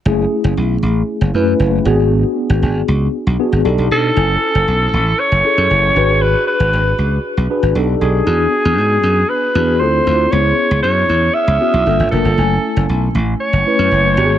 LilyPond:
<<
  \new Staff \with { instrumentName = "Alto saxophone" } { \time 4/4 \key fis \minor \tempo 4 = 117 r1 | r2. r8 a'8~ | a'2 cis''2 | b'8 b'4. r4. gis'8~ |
gis'2 b'4 c''4 | cis''4 cis''4 e''4. a'8~ | a'4. r8 cis''2 | }
  \new Staff \with { instrumentName = "Tine electric piano" } { \time 4/4 \key fis \minor <a cis' e' gis'>4. r4 <a cis' e' b'>4 <b d' fis' gis'>8~ | <b d' fis' gis'>4 r4. <b d' fis' gis'>8 <d' dis' g' a'>4 | <cis' e' a' gis''>4. r4 <cis' e' gis' a'>8 r8 <d' fis' gis' b'>8~ | <d' fis' gis' b'>4 r4. <d' fis' gis' b'>8 <d' dis' g' a'>8 <d' dis' g' a'>8 |
<b d' fis' gis'>4. r4 <b d' fis' gis'>8 <c' e' f' a'>8 <c' e' f' c''>8 | <b cis' e' gis'>4. r4 <b cis' e' fis'>8 <bes d' f' a'>8 <bes d' f' bes'>8 | <a cis' e' gis''>4. r4 <a cis' e' b'>8 r8 <b d' fis' g' gis'>8 | }
  \new Staff \with { instrumentName = "Slap bass" } { \clef bass \time 4/4 \key fis \minor fis,,8 r16 fis,,16 b,,8 a,,8 r16 fis,,16 fis,8 fis,,8 gis,,8~ | gis,,8 r16 gis,,16 gis,,8 cis,8 r16 b,,16 r16 gis,,16 b,,16 b,,16 b,8 | fis,,8 r16 fis,,16 b,,8 a,,8 r16 fis,,16 r16 fis,16 fis,,8 gis,,8~ | gis,,8 r16 gis,,16 gis,,8 cis,8 r16 b,,16 r16 gis,,16 b,,8 b,,8 |
e,8 r16 e,16 gis,8 fis,8 r8 e,8 d,8 d,8 | cis,8 r16 cis,16 fis,8 e,8 r16 cis,16 r16 b,,16 g,,16 g,,16 f,,16 g,,16 | fis,,8 r16 fis,,16 b,,8 a,,8 r16 fis,,16 r16 fis,16 fis,,8 gis,,8 | }
>>